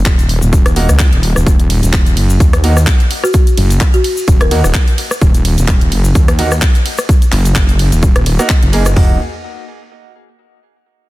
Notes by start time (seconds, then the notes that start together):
0.05 D#1, kick, clap, closed hi-hat, shaker
0.19 closed hi-hat, shaker
0.29 open hi-hat
0.42 D#1, shaker
0.53 kick, closed hi-hat, shaker
0.66 cross-stick, closed hi-hat, shaker
0.76 A#3 D#4 F#4, open hi-hat
0.89 C#2, cross-stick, closed hi-hat, shaker
0.99 kick, clap, closed hi-hat, shaker
1.12 D#1, closed hi-hat, shaker
1.23 open hi-hat
1.36 D#1, cross-stick, shaker
1.47 D#1, kick, closed hi-hat, shaker
1.59 closed hi-hat, shaker
1.70 open hi-hat, ride
1.83 D#1, closed hi-hat, shaker
1.93 kick, clap, closed hi-hat, shaker
2.06 closed hi-hat, shaker
2.17 F#1, open hi-hat, ride
2.30 shaker
2.40 D#2, kick, closed hi-hat, shaker
2.53 cross-stick, closed hi-hat, shaker
2.64 A#3 D#4 F#4, open hi-hat, ride
2.77 cross-stick, shaker
2.87 kick, clap, closed hi-hat, shaker
3.00 closed hi-hat, shaker
3.11 open hi-hat, ride
3.24 F#4, cross-stick, shaker
3.34 kick, closed hi-hat, shaker
3.47 closed hi-hat, shaker
3.57 F#1, open hi-hat, ride
3.70 closed hi-hat, shaker
3.80 kick, clap, closed hi-hat, shaker
3.94 F#4, closed hi-hat, shaker
4.04 open hi-hat, ride
4.17 shaker
4.28 D#1, kick, closed hi-hat, shaker
4.40 A#4, cross-stick, closed hi-hat, shaker
4.51 D#2 A#3 D#4 F#4 A#4, open hi-hat, ride
4.64 D#1, cross-stick, shaker
4.74 kick, clap, closed hi-hat, shaker
4.88 closed hi-hat, shaker
4.98 open hi-hat, ride
5.11 cross-stick, shaker
5.21 D#1, kick, closed hi-hat, shaker
5.34 closed hi-hat, shaker
5.45 open hi-hat, ride
5.58 D#1, closed hi-hat, shaker
5.68 kick, clap, closed hi-hat, shaker
5.81 closed hi-hat, shaker
5.92 F#1, open hi-hat, ride
6.04 shaker
6.15 D#2, kick, closed hi-hat, shaker
6.28 cross-stick, closed hi-hat, shaker
6.39 A#3 D#4 F#4, open hi-hat, ride
6.51 cross-stick, shaker
6.62 kick, clap, closed hi-hat, shaker
6.75 closed hi-hat, shaker
6.86 open hi-hat, ride
6.98 cross-stick, shaker
7.09 kick, closed hi-hat, shaker
7.22 closed hi-hat, shaker
7.32 F#1, clap, open hi-hat, ride
7.45 closed hi-hat, shaker
7.55 F#1, kick, clap, closed hi-hat, shaker
7.69 closed hi-hat, shaker
7.79 open hi-hat, ride
7.92 D#1, closed hi-hat, shaker
8.03 kick, closed hi-hat, shaker
8.16 cross-stick, closed hi-hat, shaker
8.26 open hi-hat, ride
8.39 A#3 D#4 F#4, cross-stick, closed hi-hat, shaker
8.49 kick, clap, closed hi-hat, shaker
8.62 F#1, closed hi-hat, shaker
8.73 A#3 D#4 G#4, open hi-hat, ride
8.85 cross-stick, closed hi-hat, shaker
8.97 D#1 A#3 D#4 F#4, kick, floor tom, open hi-hat